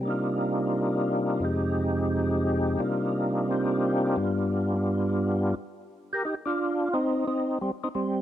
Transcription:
tonewheel organ
0.00 C3 G3 A#3
0.05 D4 D#4
0.10 F4
1.40 F2 C3 G#3 D#4
1.45 G4
2.79 C3 G3 A#3 D4 D#4 F4
3.48 A#3 C4 D#4 F4 G4
4.16 G2 G3 B3 D4 F4
4.73 G3 B3 D4
6.13 G4 A#4
6.25 D#4 G4
6.46 D4 F4
6.93 C4 D#4
7.27 C4 D#4
7.61 G3 C4
7.84 C4 D#4
7.95 G3 C4

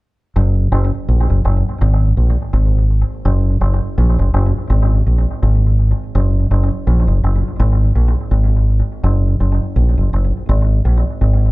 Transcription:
fingered electric bass
0.36 F#1
0.72 F#1
1.08 A#1
1.30 F#1
1.45 F#1
1.81 G#1
2.17 A#1
2.53 G#1
3.25 F#1
3.61 F#1
3.98 A#1
4.19 F#1
4.34 F#1
4.70 G#1
5.07 A#1
5.43 G#1
6.15 F#1
6.51 F#1
6.87 A#1
7.08 F#1
7.24 F#1
7.60 G#1
7.95 A#1
8.31 G#1
9.04 F#1
9.40 F#1
9.76 A#1
9.98 F#1
10.13 F#1
10.49 G#1
10.85 A#1
11.21 G#1

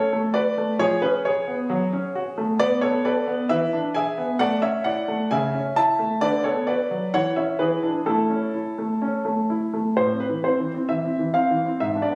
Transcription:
grand piano
Already playing: C#4 A4 C#5
0.13 A3
0.34 F#4 B4 D5
0.58 A3
0.79 F3 G#4 C#5
1.02 C#4 G#4 B4
1.25 G#4 C#5
1.47 B3
1.70 F#3
1.93 C#4
2.15 F#4
2.38 A3
2.60 B3 B4 D5
2.81 B3 A4 C#5
3.05 A4 B4 D5
3.27 B3
3.49 E3 B4 E5
3.73 D4
3.94 G#4 E5 G#5
4.18 B3
4.39 A3 D5 F#5
4.62 C#4 C#5 E5
4.84 E4 D5 F#5
5.08 A3
5.31 C#3 E5 G#5
5.54 C#4
5.76 E4 E5 A5
5.99 A3
6.21 D3 B4 D5
6.44 B3 A4 C#5
6.67 F#4 B4 D5
6.91 F#3
7.14 E3 C#5 F#5
7.36 C#4 E4 C#5 E5
7.59 E3 G#4 B4
7.83 D4 E4
8.06 A3 E4 A4
8.30 C#4
8.54 E4
8.78 A3
9.02 C#4
9.25 A3
9.50 E4
9.73 A3
9.97 A2 C5
10.12 C4
10.20 B4
10.29 E3
10.44 C4 C5
10.60 E3
10.74 C4
10.89 E3 E5
11.04 C4
11.19 E3
11.34 C4 F5
11.50 E3
11.65 C4
11.80 G#2 E5
11.95 D4
12.02 D5
12.10 B3

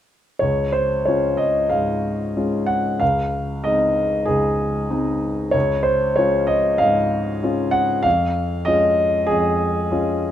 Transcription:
grand piano
0.39 C#2 C#5
0.72 C5
1.05 G#3 C#4 F4 C#5
1.37 D#5
1.70 G#2 F5
2.37 G#3 C#4 F4
2.66 F#5
3.00 C#2 F5
3.64 G#3 C4 D#4 D#5
4.26 C#2 G#4
4.90 G#3 C4 D#4
5.51 C#2 C#5
5.83 C5
6.16 G#3 C#4 F4 C#5
6.47 D#5
6.78 G#2 F5
7.43 G#3 C#4 F4
7.71 F#5
8.03 F2 F5
8.65 G#3 C#4 F4 D#5
9.27 F2 G#4
9.91 G#3 C#4 F4

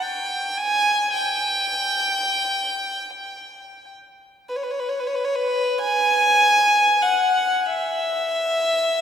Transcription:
violin
0.02 G5
0.58 G#5
1.13 G5
4.49 B4
4.56 C#5
4.63 B4
4.71 C#5
4.79 B4
4.89 C#5
4.99 B4
5.07 C#5
5.15 B4
5.25 C#5
5.35 B4
5.78 G#5
7.02 F#5
7.66 E5

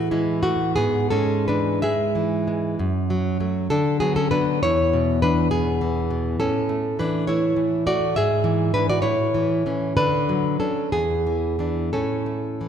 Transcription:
nylon-string guitar
Already playing: A2 E3
0.11 E3 G#3 E4
0.43 A3 F#4
0.76 G#2 B3 G#4
1.10 G#3 C#4 A4
1.48 E3 D4 B4
1.82 G#3 G#4 E5
2.15 E3
2.47 G#3
2.79 F#2
3.10 F#3
3.40 F#3 A3
3.70 D3 D4 A4
4.00 F#3 B3 G#4
4.16 C#4 A4
4.31 F#3 B3 D4 B4
4.63 E2 E4 C#5
4.94 B2
5.22 E3 D4 B4
5.51 B2 B3 G#4
5.81 E3
6.10 B2
6.40 A2 C#4 A4
6.69 A3
6.99 E3 D4 B4
7.27 A3 E4 C#5
7.57 E3
7.86 A3 F#4 D5
8.16 G#2 G#4 E5
8.44 E3
8.74 E3 D4 B4
8.89 F#4 D5
9.02 A2 E4 C#5
9.35 E3
9.66 E3 C#4
9.97 D3 D4 B4
10.29 F#3
10.60 F#3 C#4 D4 A4
10.92 E2 B3 G#4
11.27 E3
11.59 E3 D4
11.93 A2 C#4 A4
12.26 A3
12.61 E3

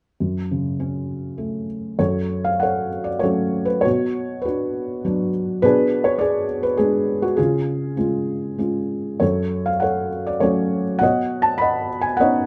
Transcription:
felt piano
0.20 F#2
0.51 C#3
0.80 C#4
1.38 A3
1.99 F#2 F#4 A4 C#5
2.44 F5
2.60 A4 C#5 F#5
3.04 D5
3.19 F#3 A3 F#4 A4 C#5
3.24 C#4
3.65 B4
3.81 C#5
3.85 B2 F#4
4.42 D4 F#4 B4
5.05 F#3 B3 D4
5.62 B2 D4 G#4 B4
6.04 C#5
6.19 G#4 B4 D5
6.63 B4
6.77 G#3 B3 D4 G#4
7.22 F#4
7.37 C#3 C#4 F4 G#4
7.97 G#3 C#4 F4
8.58 G#3 C#4 F4
9.20 F#2 F#4 A4 C#5
9.66 F5
9.80 A4 C#5 F#5
10.27 D5
10.40 F#3 A3 C#4 F#4 A4 C#5
10.99 B2 C#5 F#5
11.03 D#5
11.42 A5
11.58 D#5 F#5 B5
12.01 G#5
12.17 B3 C#4 C#5 D#5 F#5
12.21 D#4

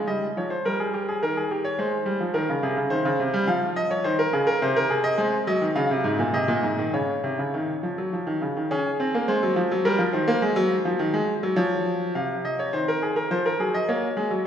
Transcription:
grand piano
0.07 G3 D#5
0.37 F3 C#5
0.50 C5
0.65 G3 A#4
0.80 G#4
0.94 G4
1.09 G#4
1.22 D#3 A#4
1.37 G#4
1.51 G4
1.65 C#5
1.79 G#3 C5
2.06 G3
2.20 F3
2.34 D#3 A#4
2.49 C#3
2.63 C3 G#4
2.77 C#3
2.90 D#3 C5
3.05 C#3
3.20 C3
3.34 G3
3.47 F3 F5
3.76 D#5
3.91 C#5
4.04 D#3 C5
4.19 A#4
4.33 C#3 G#4
4.47 A#4
4.62 C3 C5
4.76 A#4
4.90 G#4
5.04 D#5
5.18 G#3 C5
5.47 F#3 D#5
5.61 D#3
5.76 C#3 F5
5.91 C3
6.04 G#2
6.19 A#2
6.34 C3 D#5
6.48 A#2
6.63 G#2
6.79 D#3
6.93 C#3 C#5
7.24 C3
7.39 C#3
7.54 D#3
7.83 F3
7.98 F#3
8.13 F3
8.27 D#3
8.41 C#3
8.57 D#3
8.71 C#4 G#4
9.00 C4
9.14 A#3
9.28 G#3 C5
9.43 F#3
9.56 F3
9.72 F#3
9.85 G3 A#4
9.99 F3
10.13 D#3 C5
10.28 A#3
10.42 G#3
10.56 F#3
10.85 F3
10.99 D#3
11.14 G#3
11.43 F#3
11.56 F3 C#5
12.15 C3 F5
12.45 D#5
12.59 C#5
12.73 D#3 C5
12.88 A#4
13.02 G#4
13.16 A#4
13.31 F3 C5
13.46 A#4
13.60 F#3 G#4
13.74 D#5
13.88 A#3 C#5
14.17 G#3
14.31 F#3

